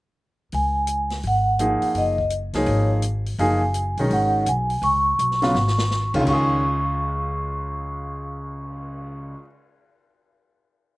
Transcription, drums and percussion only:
0.52 open hi-hat
0.87 closed hi-hat
1.10 snare, open hi-hat
1.23 open hi-hat
1.59 closed hi-hat
1.82 open hi-hat
1.95 open hi-hat
2.18 kick
2.30 closed hi-hat
2.53 snare, open hi-hat
2.66 open hi-hat
3.02 closed hi-hat
3.26 open hi-hat
3.39 open hi-hat
3.74 closed hi-hat
3.97 open hi-hat
4.11 open hi-hat
4.46 closed hi-hat
4.70 open hi-hat
4.82 open hi-hat
5.19 closed hi-hat
5.31 snare
5.42 snare, open hi-hat
5.55 snare
5.68 snare
5.78 snare
5.91 snare
6.14 kick, crash
6.27 kick, crash
6.49 cymbal swell

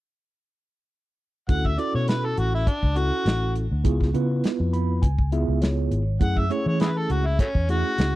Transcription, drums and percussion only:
1.49 kick, closed hi-hat
1.65 kick
1.79 closed hi-hat
2.08 snare, closed hi-hat
2.37 closed hi-hat
2.67 kick, closed hi-hat
2.83 kick
2.96 closed hi-hat
3.26 snare, closed hi-hat
3.56 closed hi-hat
3.85 kick, closed hi-hat
4.01 kick, snare
4.15 closed hi-hat
4.44 snare, closed hi-hat
4.74 closed hi-hat
5.03 kick, closed hi-hat
5.19 kick
5.32 closed hi-hat
5.62 snare, closed hi-hat
5.92 closed hi-hat
6.21 kick, closed hi-hat
6.37 kick
6.51 closed hi-hat
6.80 snare, closed hi-hat
7.10 closed hi-hat
7.39 kick, closed hi-hat
7.55 kick
7.69 closed hi-hat
7.98 snare, closed hi-hat

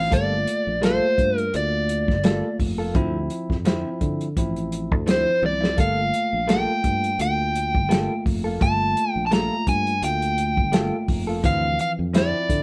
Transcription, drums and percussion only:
0.12 kick, closed hi-hat
0.47 closed hi-hat
0.83 snare, closed hi-hat
1.18 kick, closed hi-hat
1.38 closed hi-hat
1.54 closed hi-hat
1.89 closed hi-hat
2.08 kick, snare
2.24 snare, closed hi-hat
2.60 kick, open hi-hat
2.95 kick, closed hi-hat
3.30 closed hi-hat
3.50 kick, snare
3.65 snare, closed hi-hat
4.01 kick, closed hi-hat
4.21 closed hi-hat
4.37 kick, closed hi-hat
4.56 closed hi-hat
4.72 closed hi-hat
4.92 kick
5.07 snare, closed hi-hat
5.43 high tom
5.64 snare
5.78 kick, closed hi-hat
6.14 closed hi-hat
6.49 snare, closed hi-hat
6.84 kick, closed hi-hat
7.04 closed hi-hat
7.19 closed hi-hat
7.55 closed hi-hat
7.75 kick
7.91 snare, closed hi-hat
8.26 kick, open hi-hat
8.61 kick, closed hi-hat
8.97 closed hi-hat
9.32 snare, closed hi-hat
9.67 kick, closed hi-hat
9.87 closed hi-hat
10.03 closed hi-hat
10.22 closed hi-hat
10.38 closed hi-hat
10.57 kick
10.73 snare, closed hi-hat
11.08 kick, open hi-hat
11.44 kick, closed hi-hat
11.79 closed hi-hat
12.14 snare, closed hi-hat
12.50 kick, closed hi-hat

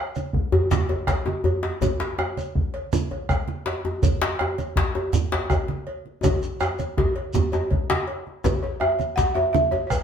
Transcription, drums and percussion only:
0.15 cowbell, high conga, shekere
0.33 bombo low, djembe slap, djembe bass
0.52 cowbell, djembe slap, djembe bass
0.71 djembe slap, high conga, low conga, shekere
0.89 cowbell, djembe slap, djembe tone
1.07 bombo rim, bombo low, cowbell, djembe slap, djembe bass, shekere
1.26 djembe slap, djembe tone, high conga
1.44 cowbell, high conga, djembe bass
1.63 djembe slap, high conga
1.81 bombo low, cowbell, djembe tone, high conga, djembe bass, low conga, shekere
2.00 djembe slap, djembe tone
2.18 bombo rim, cowbell, djembe slap, djembe tone
2.37 cowbell, high conga, shekere
2.55 bombo low, djembe slap, djembe bass
2.74 cowbell, djembe slap
2.93 high conga, low conga, shekere
3.11 cowbell, djembe slap, djembe tone
3.29 bombo rim, bombo low, cowbell, djembe bass, shekere
3.48 djembe slap, high conga
3.66 cowbell, djembe slap, high conga
3.85 djembe tone, high conga
4.02 bombo low, cowbell, high conga, djembe bass, low conga, shekere
4.21 djembe slap, djembe tone
4.39 bombo rim, cowbell, djembe slap, djembe tone
4.58 cowbell, high conga, shekere
4.76 bombo low, djembe slap, djembe bass
4.95 cowbell, djembe slap, djembe tone
5.13 high conga, low conga, shekere
5.32 cowbell, djembe slap, djembe tone
5.50 bombo rim, bombo low, cowbell, djembe tone, djembe bass, shekere
5.68 djembe slap, high conga
5.87 cowbell, high conga
6.06 djembe slap, high conga
6.23 bombo low, cowbell, djembe slap, high conga, djembe tone, low conga, djembe bass, shekere
6.42 djembe slap, djembe tone, shekere
6.60 bombo rim, cowbell, djembe tone, shekere
6.79 cowbell, high conga, shekere
6.97 bombo rim, bombo low, djembe tone, djembe bass
7.16 cowbell, djembe slap
7.34 bombo rim, djembe tone, high conga, low conga, shekere
7.52 cowbell, djembe tone, shekere
7.71 bombo low, cowbell, djembe slap, high conga, djembe bass
7.90 djembe slap, high conga
8.07 cowbell
8.26 djembe slap, high conga
8.44 bombo low, cowbell, djembe tone, high conga, djembe bass, low conga, shekere
8.64 djembe slap, djembe tone
8.81 bombo rim, cowbell, djembe tone
8.99 cowbell, high conga, shekere
9.17 bombo rim, bombo low, djembe slap, djembe bass, shekere
9.35 cowbell, djembe slap, djembe tone
9.54 high conga, low conga, shekere
9.72 cowbell, djembe tone
9.90 bombo rim, bombo low, cowbell, djembe bass, shekere

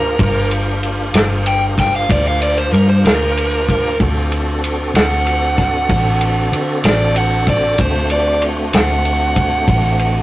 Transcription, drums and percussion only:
0.19 kick, ride
0.51 ride
0.83 ride
1.14 snare, ride
1.46 ride
1.78 kick, snare, ride
2.10 kick, ride
2.42 ride
2.74 ride
3.05 snare, ride
3.37 ride
3.69 kick, ride
4.00 kick, ride
4.32 ride
4.64 ride
4.95 snare, ride
5.26 ride
5.58 kick, snare, ride
5.89 kick, ride
6.21 ride
6.53 ride
6.84 snare, ride
7.16 ride
7.47 kick, ride
7.78 kick, ride
8.10 ride
8.42 ride
8.73 snare, ride
9.05 ride
9.36 kick, ride
9.68 kick, ride
9.99 ride

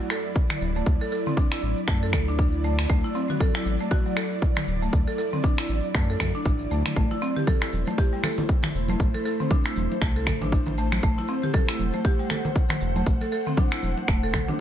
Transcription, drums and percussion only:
0.10 finger snap, cabasa
0.25 cabasa
0.36 kick, cabasa
0.50 finger snap, mid tom
0.61 cabasa
0.75 cabasa
0.86 kick, cabasa
1.02 cabasa
1.12 cabasa
1.26 mid tom, cabasa
1.37 kick, cabasa
1.52 finger snap
1.63 cabasa
1.77 cabasa
1.88 finger snap, kick, cabasa
2.03 cabasa
2.13 finger snap, kick, mid tom, cabasa
2.29 cabasa
2.39 kick, cabasa
2.64 cabasa
2.79 finger snap, cabasa
2.90 kick, cabasa
3.05 cabasa
3.15 cabasa
3.29 mid tom, cabasa
3.40 kick, cabasa
3.55 finger snap
3.66 cabasa
3.81 cabasa
3.91 kick, cabasa
4.06 cabasa
4.17 finger snap, cabasa
4.32 cabasa
4.42 kick, cabasa
4.57 finger snap, mid tom
4.68 cabasa
4.83 cabasa
4.93 kick, cabasa
5.08 cabasa
5.19 cabasa
5.33 mid tom, cabasa
5.44 kick, cabasa
5.58 finger snap, cabasa
5.69 cabasa
5.84 cabasa
5.94 finger snap, kick, cabasa
6.09 cabasa
6.20 finger snap, kick, mid tom, cabasa
6.35 cabasa
6.45 kick, cabasa
6.60 cabasa
6.71 cabasa
6.85 finger snap, mid tom, cabasa
6.96 kick, cabasa
7.11 muted conga, cabasa
7.22 cabasa
7.36 mid tom, cabasa
7.47 kick, muted conga, high conga, cabasa
7.62 finger snap
7.73 high conga, cabasa
7.87 muted conga, cabasa
7.98 kick, cabasa
8.13 cabasa
8.23 finger snap, muted conga, low conga, cabasa
8.38 low conga, cabasa
8.49 kick, cabasa
8.63 finger snap, mid tom, muted conga, low conga
8.75 cabasa
8.88 high conga, cabasa
9.00 kick, cabasa
9.14 muted conga, cabasa
9.26 cabasa
9.40 mid tom, cabasa
9.50 kick, muted conga, high conga, cabasa
9.66 finger snap
9.76 high conga, cabasa
9.91 muted conga, cabasa
10.01 finger snap, kick, cabasa
10.15 cabasa
10.27 finger snap, kick, mid tom, muted conga, cabasa
10.42 high conga, low conga, cabasa
10.52 kick, cabasa
10.66 muted conga, low conga
10.78 cabasa
10.92 finger snap, high conga, cabasa
11.03 kick, cabasa
11.18 muted conga, cabasa
11.27 cabasa
11.43 mid tom, cabasa
11.53 kick, muted conga, high conga, cabasa
11.69 finger snap
11.79 high conga, cabasa
11.94 muted conga, cabasa
12.05 kick, cabasa
12.19 cabasa
12.30 finger snap, muted conga, low conga, cabasa
12.45 low conga, cabasa
12.55 kick, cabasa
12.70 finger snap, mid tom, muted conga, low conga
12.81 cabasa
12.96 high conga, cabasa
13.06 kick, cabasa
13.21 muted conga, cabasa
13.32 cabasa
13.47 mid tom, cabasa
13.57 kick, muted conga, high conga, cabasa
13.72 finger snap
13.82 high conga, cabasa
13.97 muted conga, cabasa
14.08 finger snap, kick, cabasa
14.23 cabasa
14.34 finger snap, kick, mid tom, muted conga, cabasa
14.48 high conga, low conga, cabasa

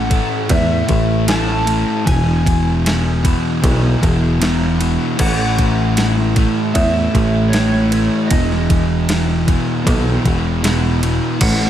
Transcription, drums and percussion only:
0.11 kick, ride
0.49 kick, ride
0.89 kick, ride
1.28 snare, ride
1.67 ride
2.07 kick, ride
2.46 kick, ride
2.86 snare, ride
3.25 kick, ride
3.64 kick, ride
4.03 kick, ride
4.42 snare, ride
4.81 ride
5.19 kick, crash
5.59 kick, ride
5.97 snare, ride
6.36 kick, ride
6.75 kick, ride
7.15 kick, ride
7.53 snare, ride
7.92 ride
8.31 kick, ride
8.52 snare
8.70 kick, ride
9.09 snare, ride
9.48 kick, ride
9.87 kick, ride
10.25 kick, ride
10.64 snare, ride
11.03 ride
11.41 kick, crash

